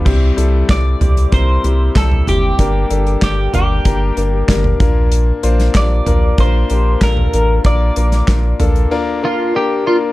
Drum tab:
CC |x---------------|----------------|----------------|----------------|
HH |--x-x-xxx-x-x-x-|x-xxx-x-x-x-x-x-|x-xxx-x-x-x-x-x-|x-xxx-xx--------|
CP |----x-------x---|----x-------x---|----x-------x---|----x-----------|
SD |----o-------o---|----o-------o---|---oo-------o---|---oo-----------|
FT |------o------oo-|------o------oo-|------o------o--|------o---------|
BD |o---o---o---o---|o---o---o---o-o-|----o---o---o---|o---o-----------|